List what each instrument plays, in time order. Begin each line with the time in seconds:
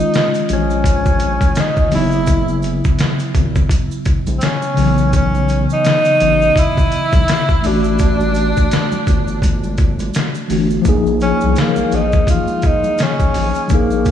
Already playing: tine electric piano D#3 G#3 C#4 F4, tenor saxophone D#4
0.00 maracas
0.14 snare, closed hi-hat, maracas
0.34 closed hi-hat, maracas
0.49 sub bass A#1, closed hi-hat, low conga, maracas
0.53 tenor saxophone C#4
0.70 maracas
0.84 kick, closed hi-hat, maracas
1.06 kick, maracas
1.19 closed hi-hat, maracas
1.41 kick, closed hi-hat, high conga, maracas
1.55 snare, closed hi-hat, maracas
1.60 tenor saxophone D#4
1.77 kick, maracas
1.88 sub bass F#1, tine electric piano C#3 F#3, open hi-hat, low conga, maracas
1.93 tine electric piano B3 D#4, tenor saxophone E4
2.02 tine electric piano E4
2.12 maracas
2.26 kick, closed hi-hat, maracas
2.48 high conga, maracas
2.62 closed hi-hat, maracas
2.84 kick, maracas
2.99 snare, closed hi-hat, maracas
3.19 closed hi-hat, maracas
3.35 sub bass G#1, kick, closed hi-hat, low conga, maracas
3.56 kick, maracas
3.69 kick, closed hi-hat, maracas
3.91 maracas
4.05 kick, closed hi-hat, maracas
4.27 sub bass A#1, closed hi-hat, high conga, maracas
4.39 tenor saxophone C4, closed hi-hat, maracas
4.43 tenor saxophone C#4, snare
4.62 maracas
4.74 sub bass B1, tine electric piano C#3 F#3, open hi-hat, low conga, maracas
4.79 tine electric piano E3 B3
4.98 maracas
5.13 tenor saxophone C#4, kick, closed hi-hat, maracas
5.35 high conga, maracas
5.49 closed hi-hat, maracas
5.70 tenor saxophone D#4, maracas
5.85 snare, closed hi-hat, maracas
6.05 closed hi-hat, maracas
6.20 sub bass A1, closed hi-hat, low conga, maracas
6.42 maracas
6.56 tenor saxophone E4, kick, closed hi-hat, maracas
6.77 kick, maracas
6.92 closed hi-hat, maracas
7.12 sub bass B1, kick, closed hi-hat, high conga, maracas
7.28 snare, closed hi-hat, maracas
7.49 kick, maracas
7.61 sub bass A1, tine electric piano E3 A3, open hi-hat, low conga, maracas
7.65 tine electric piano D4 F#4, tenor saxophone D4
7.84 maracas
7.99 kick, closed hi-hat, maracas
8.20 high conga, maracas
8.34 closed hi-hat, maracas
8.57 kick, maracas
8.71 snare, closed hi-hat, maracas
8.92 high conga, maracas
9.07 sub bass G1, kick, closed hi-hat, low conga, maracas
9.28 maracas
9.42 kick, closed hi-hat, high conga, maracas
9.64 high conga, maracas
9.77 kick, closed hi-hat, maracas
9.99 closed hi-hat, high conga, maracas
10.14 snare, closed hi-hat, maracas
10.35 maracas
10.48 sub bass G1, tine electric piano E3 A3 D4 F#4, open hi-hat, low conga, maracas
10.70 maracas
10.82 sub bass A#1, tine electric piano F3 A#3, kick, closed hi-hat, maracas
10.86 tine electric piano D#4 G#4
11.06 high conga, maracas
11.20 tenor saxophone C#4, closed hi-hat, maracas
11.41 sub bass C2, maracas
11.56 tenor saxophone A#3, snare, closed hi-hat, maracas
11.76 sub bass A#1, high conga, maracas
11.92 sub bass A#1, tenor saxophone D#4, closed hi-hat, low conga, maracas
12.12 kick, maracas
12.27 tenor saxophone F4, kick, closed hi-hat, low conga, maracas
12.48 high conga, maracas
12.62 kick, closed hi-hat, maracas
12.66 tenor saxophone D#4
12.84 high conga, maracas
12.98 snare, closed hi-hat, maracas
13.02 tenor saxophone C#4
13.20 kick, maracas
13.34 sub bass A#1, open hi-hat, low conga, maracas
13.55 maracas
13.68 sub bass A#1, tine electric piano F3 A#3, kick, closed hi-hat, maracas
13.72 tenor saxophone A#3, tine electric piano D#4 G#4
13.90 high conga, maracas
14.05 kick, closed hi-hat, maracas